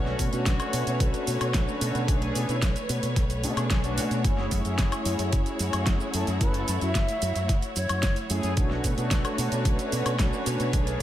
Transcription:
Already playing: fingered electric bass B1, string section D3 A3 B4 C#5, analog polysynth A3 C#4 D4 F#4
0.06 snare
0.19 fingered electric bass B2, kick, open hi-hat, shaker
0.32 fingered electric bass B2, analog polysynth A3 C#4 D4 F#4, closed hi-hat, shaker
0.46 fingered electric bass B1, kick, snare, closed hi-hat, shaker
0.60 closed hi-hat, high woodblock, shaker
0.73 fingered electric bass B2, open hi-hat, shaker
0.87 fingered electric bass B2, closed hi-hat, shaker
1.00 fingered electric bass B1, kick, closed hi-hat, shaker
1.14 closed hi-hat, shaker
1.27 fingered electric bass B2, open hi-hat, shaker
1.41 fingered electric bass B2, closed hi-hat, high woodblock, shaker
1.54 fingered electric bass B1, kick, snare, closed hi-hat, shaker
1.68 shaker
1.81 fingered electric bass B2, open hi-hat, shaker
1.95 fingered electric bass B2, closed hi-hat, shaker
2.08 fingered electric bass B1, analog polysynth A3 C#4 D4 G#4, kick, closed hi-hat, shaker
2.22 closed hi-hat
2.35 fingered electric bass B2, open hi-hat, shaker
2.48 fingered electric bass B2, analog polysynth A3 C#4 D4 E4, closed hi-hat, shaker
2.62 fingered electric bass B1, kick, snare, closed hi-hat, shaker
2.76 closed hi-hat, shaker
2.89 fingered electric bass B2, open hi-hat, shaker
3.03 fingered electric bass B2, closed hi-hat, shaker
3.16 fingered electric bass B1, kick, snare, closed hi-hat, shaker
3.30 closed hi-hat, shaker
3.43 fingered electric bass B2, analog polysynth A3 C#4 D4 G#4, open hi-hat, shaker
3.57 fingered electric bass B2, closed hi-hat, high woodblock, shaker
3.70 fingered electric bass B1, kick, snare, closed hi-hat, shaker
3.83 analog polysynth A3 C#4 D4 F#4, closed hi-hat, shaker
3.97 fingered electric bass B2, open hi-hat, shaker
4.11 fingered electric bass B2, closed hi-hat, shaker
4.24 fingered electric bass F#1, analog polysynth A3 C#4 E4 G#4, string section E4 F#4, kick, closed hi-hat, shaker
4.38 snare
4.51 fingered electric bass F#2, kick, open hi-hat, shaker
4.64 fingered electric bass F#2, analog polysynth A3 C#4 E4 G#4, closed hi-hat, shaker
4.78 fingered electric bass F#1, kick, snare, closed hi-hat, shaker
4.92 closed hi-hat, high woodblock, shaker
5.05 fingered electric bass F#2, open hi-hat, shaker
5.19 fingered electric bass F#2, closed hi-hat, shaker
5.33 fingered electric bass F#1, kick, closed hi-hat, shaker
5.46 closed hi-hat, shaker
5.59 fingered electric bass F#2, open hi-hat, shaker
5.73 fingered electric bass F#2, closed hi-hat, high woodblock, shaker
5.86 fingered electric bass F#1, kick, snare, closed hi-hat, shaker
6.00 shaker
6.14 fingered electric bass F#2, flute A4, open hi-hat, shaker
6.27 fingered electric bass F#2, closed hi-hat, shaker
6.41 fingered electric bass F#1, analog polysynth A3 C#4 E4 A4, flute B4, kick, closed hi-hat, shaker
6.54 closed hi-hat
6.68 fingered electric bass F#2, open hi-hat, shaker
6.81 fingered electric bass F#2, analog polysynth A3 C#4 E4 F#4, flute E5, closed hi-hat, shaker
6.95 fingered electric bass F#1, kick, snare, closed hi-hat, shaker
7.08 closed hi-hat, shaker
7.22 fingered electric bass F#2, open hi-hat, shaker
7.36 fingered electric bass F#2, closed hi-hat, shaker
7.49 fingered electric bass F#1, kick, snare, closed hi-hat, shaker
7.62 closed hi-hat, shaker
7.76 fingered electric bass F#2, flute C#5, open hi-hat, shaker
7.89 fingered electric bass F#2, closed hi-hat, high woodblock, shaker
8.03 fingered electric bass F#1, kick, snare, closed hi-hat, shaker
8.16 closed hi-hat, shaker
8.30 fingered electric bass F#2, analog polysynth A3 C#4 E4 G#4, open hi-hat, shaker
8.43 fingered electric bass F#2, closed hi-hat, shaker
8.57 fingered electric bass B1, string section D3 A3 B4 C#5, analog polysynth A3 C#4 D4 F#4, kick, closed hi-hat, shaker
8.70 snare
8.84 fingered electric bass B2, kick, open hi-hat, shaker
8.97 fingered electric bass B2, analog polysynth A3 C#4 D4 F#4, closed hi-hat, shaker
9.11 fingered electric bass B1, kick, snare, closed hi-hat, shaker
9.25 closed hi-hat, high woodblock, shaker
9.38 fingered electric bass B2, open hi-hat, shaker
9.52 fingered electric bass B2, closed hi-hat, shaker
9.65 fingered electric bass B1, kick, closed hi-hat, shaker
9.79 closed hi-hat, shaker
9.92 fingered electric bass B2, open hi-hat, shaker
10.06 fingered electric bass B2, closed hi-hat, high woodblock, shaker
10.19 fingered electric bass B1, kick, snare, closed hi-hat, shaker
10.33 shaker
10.46 fingered electric bass B2, open hi-hat, shaker
10.60 fingered electric bass B2, closed hi-hat, shaker
10.73 fingered electric bass B1, analog polysynth A3 C#4 D4 G#4, kick, closed hi-hat, shaker
10.87 closed hi-hat, shaker

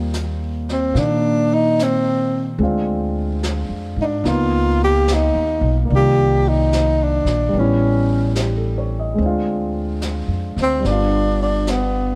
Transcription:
Already playing: upright bass D#2, grand piano G3 A#3 C4 F4
0.14 snare, hi-hat pedal
0.69 tenor saxophone C4, snare
0.94 upright bass A#2, grand piano D#3 A#3, brush sweep, snare
0.98 tenor saxophone D4
1.54 tenor saxophone D#4
1.79 tenor saxophone C4, snare, hi-hat pedal
2.58 upright bass D2, grand piano G#3 C4 D4, brush sweep
2.63 grand piano F4
3.43 snare, hi-hat pedal
3.69 upright bass F2
3.96 upright bass G#2
4.01 tenor saxophone D4 D#4
4.24 upright bass C#2, grand piano A#3 B3 D#4 F4, brush sweep, snare
4.28 tenor saxophone F4
4.84 tenor saxophone G4
5.08 snare, hi-hat pedal
5.14 tenor saxophone D#4
5.35 upright bass D#2
5.61 upright bass B1
5.85 grand piano A#3 D5
5.90 upright bass C2, grand piano D#3, brush sweep
5.96 grand piano F4, tenor saxophone G4
6.48 tenor saxophone D#4
6.73 snare, hi-hat pedal
7.03 tenor saxophone D4
7.25 upright bass A#1, snare
7.49 grand piano G3
7.53 upright bass A1, grand piano B3 C#4, brush sweep
7.59 tenor saxophone C#4, grand piano E4
8.35 grand piano G4, snare, hi-hat pedal
8.57 grand piano A4
8.78 grand piano C#5
8.99 grand piano D#5
9.14 upright bass D2, grand piano G#3 C4
9.19 grand piano D4, brush sweep
9.25 grand piano F4
10.02 snare, hi-hat pedal
10.28 upright bass F2
10.57 upright bass D2, snare
10.62 tenor saxophone C4
10.80 grand piano G3 B3
10.84 upright bass G1, tenor saxophone D4, grand piano D4, brush sweep, snare
10.91 grand piano F4
11.43 tenor saxophone D4
11.67 tenor saxophone B3, snare, hi-hat pedal

